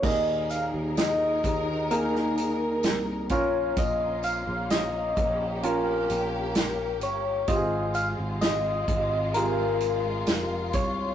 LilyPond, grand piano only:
<<
  \new Staff \with { instrumentName = "Grand piano" } { \time 4/4 \key ees \mixolydian \tempo 4 = 64 <bes ees' aes'>2 <bes ees' aes'>4. <des' f' bes'>8~ | <des' f' bes'>4. r8 <des' f' bes'>2 | <c' f' g' aes'>2 <c f' aes'>2 | }
  \new Staff \with { instrumentName = "Grand piano" } { \clef bass \time 4/4 \key ees \mixolydian bes,4. r2 r8 | r1 | r1 | }
>>